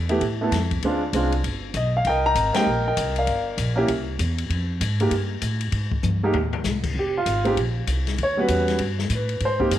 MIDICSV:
0, 0, Header, 1, 4, 480
1, 0, Start_track
1, 0, Key_signature, -4, "minor"
1, 0, Tempo, 306279
1, 1309, Time_signature, 4, 2, 24, 8
1, 15340, End_track
2, 0, Start_track
2, 0, Title_t, "Grand piano"
2, 0, Program_c, 0, 0
2, 146, Note_on_c, 0, 57, 67
2, 151, Note_on_c, 0, 59, 67
2, 159, Note_on_c, 0, 64, 62
2, 175, Note_on_c, 0, 67, 76
2, 320, Note_off_c, 0, 57, 0
2, 322, Note_off_c, 0, 59, 0
2, 326, Note_off_c, 0, 64, 0
2, 334, Note_off_c, 0, 67, 0
2, 644, Note_on_c, 0, 57, 66
2, 649, Note_on_c, 0, 59, 59
2, 666, Note_on_c, 0, 64, 60
2, 681, Note_on_c, 0, 69, 65
2, 809, Note_off_c, 0, 57, 0
2, 811, Note_off_c, 0, 59, 0
2, 820, Note_off_c, 0, 64, 0
2, 827, Note_off_c, 0, 69, 0
2, 1318, Note_on_c, 0, 56, 61
2, 1329, Note_on_c, 0, 60, 60
2, 1333, Note_on_c, 0, 62, 62
2, 1348, Note_on_c, 0, 65, 65
2, 1583, Note_off_c, 0, 56, 0
2, 1589, Note_off_c, 0, 60, 0
2, 1591, Note_off_c, 0, 62, 0
2, 1598, Note_off_c, 0, 65, 0
2, 1786, Note_on_c, 0, 56, 62
2, 1796, Note_on_c, 0, 60, 54
2, 1806, Note_on_c, 0, 62, 57
2, 1820, Note_on_c, 0, 65, 69
2, 2057, Note_off_c, 0, 56, 0
2, 2062, Note_off_c, 0, 60, 0
2, 2067, Note_off_c, 0, 62, 0
2, 2074, Note_off_c, 0, 65, 0
2, 2770, Note_on_c, 0, 75, 74
2, 3039, Note_off_c, 0, 75, 0
2, 3083, Note_on_c, 0, 77, 79
2, 3234, Note_off_c, 0, 77, 0
2, 3245, Note_on_c, 0, 79, 88
2, 3274, Note_on_c, 0, 70, 64
2, 3282, Note_on_c, 0, 75, 70
2, 3542, Note_on_c, 0, 82, 116
2, 3545, Note_off_c, 0, 79, 0
2, 3553, Note_off_c, 0, 75, 0
2, 3576, Note_on_c, 0, 75, 61
2, 3581, Note_on_c, 0, 79, 67
2, 3968, Note_on_c, 0, 58, 62
2, 3980, Note_off_c, 0, 79, 0
2, 3982, Note_off_c, 0, 82, 0
2, 3982, Note_on_c, 0, 60, 57
2, 3998, Note_on_c, 0, 63, 56
2, 4000, Note_off_c, 0, 70, 0
2, 4000, Note_off_c, 0, 75, 0
2, 4004, Note_on_c, 0, 79, 106
2, 4008, Note_on_c, 0, 67, 59
2, 4023, Note_on_c, 0, 70, 73
2, 4023, Note_on_c, 0, 75, 72
2, 4150, Note_off_c, 0, 58, 0
2, 4157, Note_off_c, 0, 60, 0
2, 4165, Note_off_c, 0, 63, 0
2, 4170, Note_off_c, 0, 67, 0
2, 4452, Note_off_c, 0, 79, 0
2, 4488, Note_off_c, 0, 75, 0
2, 4498, Note_off_c, 0, 70, 0
2, 4507, Note_on_c, 0, 79, 81
2, 4511, Note_on_c, 0, 75, 57
2, 4521, Note_on_c, 0, 70, 54
2, 4944, Note_off_c, 0, 79, 0
2, 4965, Note_off_c, 0, 70, 0
2, 4988, Note_on_c, 0, 70, 49
2, 4990, Note_on_c, 0, 74, 48
2, 4992, Note_on_c, 0, 77, 70
2, 5114, Note_off_c, 0, 75, 0
2, 5427, Note_off_c, 0, 77, 0
2, 5875, Note_off_c, 0, 70, 0
2, 5875, Note_off_c, 0, 74, 0
2, 5886, Note_on_c, 0, 58, 68
2, 5906, Note_on_c, 0, 61, 63
2, 5916, Note_on_c, 0, 67, 77
2, 5921, Note_on_c, 0, 64, 64
2, 6068, Note_off_c, 0, 58, 0
2, 6078, Note_off_c, 0, 61, 0
2, 6083, Note_off_c, 0, 67, 0
2, 6086, Note_off_c, 0, 64, 0
2, 7842, Note_on_c, 0, 56, 66
2, 7846, Note_on_c, 0, 58, 61
2, 7860, Note_on_c, 0, 63, 55
2, 7870, Note_on_c, 0, 67, 71
2, 8006, Note_off_c, 0, 56, 0
2, 8008, Note_off_c, 0, 58, 0
2, 8015, Note_off_c, 0, 63, 0
2, 8020, Note_off_c, 0, 67, 0
2, 9768, Note_on_c, 0, 56, 67
2, 9774, Note_on_c, 0, 58, 65
2, 9780, Note_on_c, 0, 63, 73
2, 9800, Note_on_c, 0, 67, 78
2, 9929, Note_off_c, 0, 56, 0
2, 9932, Note_off_c, 0, 58, 0
2, 9935, Note_off_c, 0, 63, 0
2, 9945, Note_off_c, 0, 67, 0
2, 10954, Note_on_c, 0, 67, 64
2, 11222, Note_off_c, 0, 67, 0
2, 11244, Note_on_c, 0, 65, 83
2, 11669, Note_on_c, 0, 56, 65
2, 11673, Note_on_c, 0, 60, 59
2, 11693, Note_on_c, 0, 63, 58
2, 11708, Note_on_c, 0, 67, 80
2, 11840, Note_off_c, 0, 56, 0
2, 11841, Note_off_c, 0, 65, 0
2, 11842, Note_off_c, 0, 60, 0
2, 11852, Note_off_c, 0, 63, 0
2, 11860, Note_off_c, 0, 67, 0
2, 12900, Note_on_c, 0, 73, 87
2, 13120, Note_on_c, 0, 55, 54
2, 13125, Note_on_c, 0, 59, 57
2, 13146, Note_on_c, 0, 61, 53
2, 13148, Note_on_c, 0, 66, 72
2, 13156, Note_off_c, 0, 73, 0
2, 13172, Note_on_c, 0, 71, 83
2, 13749, Note_off_c, 0, 55, 0
2, 13751, Note_off_c, 0, 59, 0
2, 13762, Note_off_c, 0, 61, 0
2, 13763, Note_off_c, 0, 66, 0
2, 13766, Note_off_c, 0, 71, 0
2, 14336, Note_on_c, 0, 71, 55
2, 14727, Note_off_c, 0, 71, 0
2, 14751, Note_on_c, 0, 71, 52
2, 14779, Note_off_c, 0, 71, 0
2, 14813, Note_on_c, 0, 72, 81
2, 15038, Note_on_c, 0, 58, 63
2, 15039, Note_on_c, 0, 60, 58
2, 15053, Note_on_c, 0, 63, 61
2, 15054, Note_on_c, 0, 67, 79
2, 15206, Note_off_c, 0, 58, 0
2, 15206, Note_off_c, 0, 60, 0
2, 15213, Note_off_c, 0, 63, 0
2, 15214, Note_off_c, 0, 67, 0
2, 15230, Note_off_c, 0, 72, 0
2, 15292, Note_on_c, 0, 68, 65
2, 15340, Note_off_c, 0, 68, 0
2, 15340, End_track
3, 0, Start_track
3, 0, Title_t, "Upright bass"
3, 0, Program_c, 1, 32
3, 0, Note_on_c, 1, 40, 92
3, 314, Note_off_c, 1, 40, 0
3, 323, Note_on_c, 1, 45, 83
3, 801, Note_off_c, 1, 45, 0
3, 808, Note_on_c, 1, 41, 98
3, 1284, Note_off_c, 1, 41, 0
3, 1291, Note_on_c, 1, 38, 72
3, 1759, Note_off_c, 1, 38, 0
3, 1768, Note_on_c, 1, 36, 95
3, 2244, Note_off_c, 1, 36, 0
3, 2255, Note_on_c, 1, 31, 75
3, 2716, Note_off_c, 1, 31, 0
3, 2725, Note_on_c, 1, 35, 88
3, 3202, Note_off_c, 1, 35, 0
3, 3209, Note_on_c, 1, 36, 78
3, 3670, Note_off_c, 1, 36, 0
3, 3679, Note_on_c, 1, 32, 85
3, 3971, Note_off_c, 1, 32, 0
3, 4176, Note_on_c, 1, 34, 75
3, 4642, Note_off_c, 1, 34, 0
3, 4651, Note_on_c, 1, 36, 100
3, 5114, Note_off_c, 1, 36, 0
3, 5123, Note_on_c, 1, 31, 73
3, 5592, Note_off_c, 1, 31, 0
3, 5602, Note_on_c, 1, 34, 94
3, 6072, Note_off_c, 1, 34, 0
3, 6081, Note_on_c, 1, 36, 77
3, 6559, Note_off_c, 1, 36, 0
3, 6567, Note_on_c, 1, 40, 102
3, 7036, Note_off_c, 1, 40, 0
3, 7045, Note_on_c, 1, 41, 84
3, 7521, Note_off_c, 1, 41, 0
3, 7532, Note_on_c, 1, 44, 101
3, 7996, Note_off_c, 1, 44, 0
3, 8005, Note_on_c, 1, 43, 71
3, 8481, Note_off_c, 1, 43, 0
3, 8490, Note_on_c, 1, 45, 96
3, 8955, Note_off_c, 1, 45, 0
3, 8964, Note_on_c, 1, 44, 83
3, 9440, Note_off_c, 1, 44, 0
3, 9455, Note_on_c, 1, 43, 97
3, 9922, Note_off_c, 1, 43, 0
3, 9931, Note_on_c, 1, 39, 75
3, 10404, Note_off_c, 1, 39, 0
3, 10411, Note_on_c, 1, 36, 99
3, 10879, Note_off_c, 1, 36, 0
3, 10888, Note_on_c, 1, 29, 75
3, 11363, Note_off_c, 1, 29, 0
3, 11374, Note_on_c, 1, 32, 81
3, 11846, Note_off_c, 1, 32, 0
3, 11861, Note_on_c, 1, 34, 78
3, 12330, Note_off_c, 1, 34, 0
3, 12337, Note_on_c, 1, 36, 92
3, 12808, Note_off_c, 1, 36, 0
3, 12827, Note_on_c, 1, 39, 81
3, 13289, Note_off_c, 1, 39, 0
3, 13298, Note_on_c, 1, 40, 77
3, 13764, Note_off_c, 1, 40, 0
3, 13774, Note_on_c, 1, 43, 75
3, 14247, Note_off_c, 1, 43, 0
3, 14259, Note_on_c, 1, 45, 87
3, 14730, Note_off_c, 1, 45, 0
3, 14742, Note_on_c, 1, 44, 82
3, 15207, Note_off_c, 1, 44, 0
3, 15217, Note_on_c, 1, 43, 90
3, 15340, Note_off_c, 1, 43, 0
3, 15340, End_track
4, 0, Start_track
4, 0, Title_t, "Drums"
4, 143, Note_on_c, 9, 51, 45
4, 300, Note_off_c, 9, 51, 0
4, 329, Note_on_c, 9, 51, 56
4, 334, Note_on_c, 9, 36, 24
4, 486, Note_off_c, 9, 51, 0
4, 490, Note_off_c, 9, 36, 0
4, 816, Note_on_c, 9, 36, 21
4, 816, Note_on_c, 9, 44, 50
4, 816, Note_on_c, 9, 51, 71
4, 819, Note_on_c, 9, 38, 42
4, 972, Note_off_c, 9, 44, 0
4, 972, Note_off_c, 9, 51, 0
4, 973, Note_off_c, 9, 36, 0
4, 975, Note_off_c, 9, 38, 0
4, 1114, Note_on_c, 9, 51, 48
4, 1118, Note_on_c, 9, 36, 53
4, 1271, Note_off_c, 9, 51, 0
4, 1274, Note_off_c, 9, 36, 0
4, 1294, Note_on_c, 9, 51, 61
4, 1297, Note_on_c, 9, 36, 23
4, 1451, Note_off_c, 9, 51, 0
4, 1453, Note_off_c, 9, 36, 0
4, 1774, Note_on_c, 9, 44, 56
4, 1774, Note_on_c, 9, 51, 72
4, 1776, Note_on_c, 9, 36, 19
4, 1931, Note_off_c, 9, 44, 0
4, 1931, Note_off_c, 9, 51, 0
4, 1933, Note_off_c, 9, 36, 0
4, 2074, Note_on_c, 9, 51, 48
4, 2231, Note_off_c, 9, 51, 0
4, 2256, Note_on_c, 9, 36, 26
4, 2259, Note_on_c, 9, 51, 58
4, 2413, Note_off_c, 9, 36, 0
4, 2416, Note_off_c, 9, 51, 0
4, 2725, Note_on_c, 9, 44, 55
4, 2725, Note_on_c, 9, 51, 61
4, 2730, Note_on_c, 9, 36, 18
4, 2882, Note_off_c, 9, 44, 0
4, 2882, Note_off_c, 9, 51, 0
4, 2887, Note_off_c, 9, 36, 0
4, 3208, Note_on_c, 9, 36, 26
4, 3208, Note_on_c, 9, 51, 55
4, 3364, Note_off_c, 9, 36, 0
4, 3365, Note_off_c, 9, 51, 0
4, 3687, Note_on_c, 9, 36, 21
4, 3690, Note_on_c, 9, 44, 72
4, 3690, Note_on_c, 9, 51, 76
4, 3843, Note_off_c, 9, 36, 0
4, 3847, Note_off_c, 9, 44, 0
4, 3847, Note_off_c, 9, 51, 0
4, 3987, Note_on_c, 9, 51, 68
4, 3990, Note_on_c, 9, 38, 86
4, 4143, Note_off_c, 9, 51, 0
4, 4146, Note_off_c, 9, 38, 0
4, 4649, Note_on_c, 9, 36, 23
4, 4652, Note_on_c, 9, 44, 69
4, 4652, Note_on_c, 9, 51, 76
4, 4806, Note_off_c, 9, 36, 0
4, 4808, Note_off_c, 9, 44, 0
4, 4808, Note_off_c, 9, 51, 0
4, 4950, Note_on_c, 9, 51, 48
4, 5107, Note_off_c, 9, 51, 0
4, 5125, Note_on_c, 9, 51, 62
4, 5130, Note_on_c, 9, 36, 21
4, 5282, Note_off_c, 9, 51, 0
4, 5286, Note_off_c, 9, 36, 0
4, 5606, Note_on_c, 9, 44, 60
4, 5606, Note_on_c, 9, 51, 75
4, 5608, Note_on_c, 9, 36, 30
4, 5763, Note_off_c, 9, 44, 0
4, 5763, Note_off_c, 9, 51, 0
4, 5765, Note_off_c, 9, 36, 0
4, 6085, Note_on_c, 9, 51, 64
4, 6090, Note_on_c, 9, 36, 21
4, 6242, Note_off_c, 9, 51, 0
4, 6246, Note_off_c, 9, 36, 0
4, 6570, Note_on_c, 9, 44, 64
4, 6570, Note_on_c, 9, 51, 68
4, 6571, Note_on_c, 9, 36, 19
4, 6726, Note_off_c, 9, 44, 0
4, 6726, Note_off_c, 9, 51, 0
4, 6727, Note_off_c, 9, 36, 0
4, 6869, Note_on_c, 9, 51, 48
4, 7026, Note_off_c, 9, 51, 0
4, 7053, Note_on_c, 9, 36, 23
4, 7058, Note_on_c, 9, 51, 64
4, 7210, Note_off_c, 9, 36, 0
4, 7215, Note_off_c, 9, 51, 0
4, 7535, Note_on_c, 9, 36, 26
4, 7536, Note_on_c, 9, 44, 68
4, 7536, Note_on_c, 9, 51, 82
4, 7692, Note_off_c, 9, 36, 0
4, 7693, Note_off_c, 9, 44, 0
4, 7693, Note_off_c, 9, 51, 0
4, 7834, Note_on_c, 9, 51, 49
4, 7991, Note_off_c, 9, 51, 0
4, 8009, Note_on_c, 9, 36, 22
4, 8010, Note_on_c, 9, 51, 68
4, 8166, Note_off_c, 9, 36, 0
4, 8167, Note_off_c, 9, 51, 0
4, 8488, Note_on_c, 9, 44, 66
4, 8488, Note_on_c, 9, 51, 72
4, 8492, Note_on_c, 9, 36, 19
4, 8645, Note_off_c, 9, 44, 0
4, 8645, Note_off_c, 9, 51, 0
4, 8649, Note_off_c, 9, 36, 0
4, 8787, Note_on_c, 9, 51, 53
4, 8944, Note_off_c, 9, 51, 0
4, 8967, Note_on_c, 9, 51, 57
4, 8971, Note_on_c, 9, 36, 25
4, 9123, Note_off_c, 9, 51, 0
4, 9128, Note_off_c, 9, 36, 0
4, 9271, Note_on_c, 9, 36, 70
4, 9428, Note_off_c, 9, 36, 0
4, 9448, Note_on_c, 9, 44, 62
4, 9451, Note_on_c, 9, 47, 55
4, 9605, Note_off_c, 9, 44, 0
4, 9608, Note_off_c, 9, 47, 0
4, 9928, Note_on_c, 9, 43, 83
4, 10085, Note_off_c, 9, 43, 0
4, 10231, Note_on_c, 9, 43, 78
4, 10387, Note_off_c, 9, 43, 0
4, 10405, Note_on_c, 9, 44, 60
4, 10408, Note_on_c, 9, 38, 61
4, 10562, Note_off_c, 9, 44, 0
4, 10565, Note_off_c, 9, 38, 0
4, 10713, Note_on_c, 9, 49, 78
4, 10714, Note_on_c, 9, 36, 78
4, 10870, Note_off_c, 9, 49, 0
4, 10871, Note_off_c, 9, 36, 0
4, 10895, Note_on_c, 9, 36, 27
4, 11052, Note_off_c, 9, 36, 0
4, 11379, Note_on_c, 9, 44, 66
4, 11379, Note_on_c, 9, 51, 69
4, 11380, Note_on_c, 9, 36, 20
4, 11536, Note_off_c, 9, 44, 0
4, 11536, Note_off_c, 9, 51, 0
4, 11537, Note_off_c, 9, 36, 0
4, 11679, Note_on_c, 9, 51, 42
4, 11836, Note_off_c, 9, 51, 0
4, 11863, Note_on_c, 9, 36, 23
4, 11867, Note_on_c, 9, 51, 62
4, 12019, Note_off_c, 9, 36, 0
4, 12023, Note_off_c, 9, 51, 0
4, 12339, Note_on_c, 9, 44, 59
4, 12339, Note_on_c, 9, 51, 66
4, 12342, Note_on_c, 9, 36, 28
4, 12496, Note_off_c, 9, 44, 0
4, 12496, Note_off_c, 9, 51, 0
4, 12499, Note_off_c, 9, 36, 0
4, 12647, Note_on_c, 9, 51, 44
4, 12650, Note_on_c, 9, 38, 36
4, 12803, Note_off_c, 9, 51, 0
4, 12807, Note_off_c, 9, 38, 0
4, 12824, Note_on_c, 9, 36, 25
4, 12824, Note_on_c, 9, 51, 59
4, 12981, Note_off_c, 9, 36, 0
4, 12981, Note_off_c, 9, 51, 0
4, 13295, Note_on_c, 9, 44, 64
4, 13295, Note_on_c, 9, 51, 72
4, 13302, Note_on_c, 9, 36, 24
4, 13452, Note_off_c, 9, 44, 0
4, 13452, Note_off_c, 9, 51, 0
4, 13459, Note_off_c, 9, 36, 0
4, 13602, Note_on_c, 9, 51, 48
4, 13605, Note_on_c, 9, 38, 34
4, 13759, Note_off_c, 9, 51, 0
4, 13762, Note_off_c, 9, 38, 0
4, 13770, Note_on_c, 9, 51, 68
4, 13780, Note_on_c, 9, 36, 22
4, 13926, Note_off_c, 9, 51, 0
4, 13937, Note_off_c, 9, 36, 0
4, 14086, Note_on_c, 9, 38, 46
4, 14243, Note_off_c, 9, 38, 0
4, 14257, Note_on_c, 9, 44, 68
4, 14257, Note_on_c, 9, 51, 61
4, 14261, Note_on_c, 9, 36, 25
4, 14414, Note_off_c, 9, 44, 0
4, 14414, Note_off_c, 9, 51, 0
4, 14418, Note_off_c, 9, 36, 0
4, 14558, Note_on_c, 9, 51, 45
4, 14715, Note_off_c, 9, 51, 0
4, 14738, Note_on_c, 9, 51, 53
4, 14742, Note_on_c, 9, 36, 19
4, 14895, Note_off_c, 9, 51, 0
4, 14899, Note_off_c, 9, 36, 0
4, 15043, Note_on_c, 9, 36, 51
4, 15200, Note_off_c, 9, 36, 0
4, 15222, Note_on_c, 9, 44, 69
4, 15222, Note_on_c, 9, 51, 78
4, 15340, Note_off_c, 9, 44, 0
4, 15340, Note_off_c, 9, 51, 0
4, 15340, End_track
0, 0, End_of_file